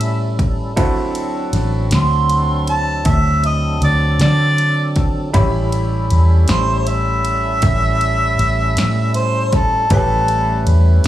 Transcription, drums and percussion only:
0.01 ride medium
0.39 kick medium
0.39 ride medium
0.77 kick loud
0.77 ride medium
1.15 ride medium
1.53 snare soft
1.53 ride medium
1.91 snare loud
1.91 ride medium
2.30 ride medium
2.67 ride medium
3.05 kick loud
3.05 ride medium
3.44 ride soft
3.82 ride medium
4.20 snare loud
4.20 ride medium
4.58 ride medium
4.96 kick medium
4.96 snare soft
4.96 ride soft
5.34 kick loud
5.34 ride medium
5.72 ride medium
6.10 ride medium
6.48 snare loud
6.48 ride medium
6.87 ride medium
7.25 ride medium
7.62 kick loud
7.62 ride medium
8.01 ride medium
8.39 ride medium
8.77 snare loud
8.77 ride medium
9.14 ride medium
9.53 kick medium
9.53 snare soft
9.53 ride medium
9.90 kick loud
9.90 ride medium
10.28 ride medium
10.67 ride medium
11.04 ride medium

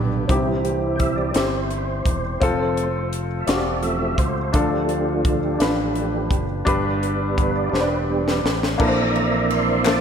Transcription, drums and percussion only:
0.29 kick medium
0.29 closed hi-hat medium
0.65 closed hi-hat soft
0.99 kick medium
0.99 closed hi-hat medium
1.34 snare loud
1.34 closed hi-hat medium
1.70 closed hi-hat soft
2.06 kick medium
2.06 closed hi-hat medium
2.42 kick medium
2.42 closed hi-hat medium
2.77 closed hi-hat soft
3.13 closed hi-hat medium
3.47 snare loud
3.47 closed hi-hat medium
3.83 closed hi-hat soft
4.18 kick medium
4.18 closed hi-hat medium
4.54 kick medium
4.54 closed hi-hat loud
4.89 closed hi-hat soft
5.25 kick medium
5.25 closed hi-hat medium
5.60 snare loud
5.60 closed hi-hat medium
5.95 closed hi-hat soft
6.31 kick medium
6.31 closed hi-hat medium
6.67 kick loud
6.67 closed hi-hat medium
7.03 closed hi-hat soft
7.38 kick medium
7.38 closed hi-hat medium
7.74 snare medium
8.28 snare medium
8.46 snare medium
8.63 snare medium
8.80 kick medium
8.80 crash medium
9.15 ride soft
9.50 ride medium
9.85 snare loud
9.85 clap medium
9.85 ride medium

